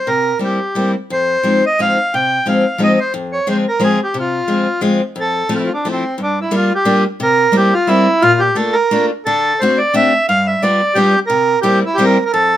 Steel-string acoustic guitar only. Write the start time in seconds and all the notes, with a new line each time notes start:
0.07 C3
0.39 G3 A#3 C4 E4
0.75 G3 A#3 C4 E4
1.10 F2
1.43 F3 G#3 C4 D#4
1.79 F3 G#3 C4 D#4
2.14 C3
2.46 F3 G#3 C4 D#4
2.78 F3 G#3 C4 D#4
3.14 F2
3.47 F3 G#3 C4 F4
3.80 F3 G#3 C4 F4
4.14 C3
4.48 F3 G#3 C4 F4
4.81 F3 G#3 C4 F4
5.16 F2
5.49 F3 A3 C4 E4
5.85 F3 A3 C4 E4
6.18 G2
6.51 G3 A#3 D4 F4
6.85 G3 A#3 D4 F4
7.20 C3
7.52 G3 A#3 C4 E4
7.87 G3 A#3 C4 E4
8.22 A#2
8.55 A3 A#3 D4 F4
8.91 A3 A#3 D4 F4
9.27 D3
9.62 A3 C4 D4 F#4
9.94 A3 C4 D4 F#4
10.29 G2
10.62 G3 B3 D4 F4
10.95 G3 B3 D4 F4
11.30 C3
11.63 G3 A#3 C4 E4
11.98 G3 A#3 C4 E4
12.34 F2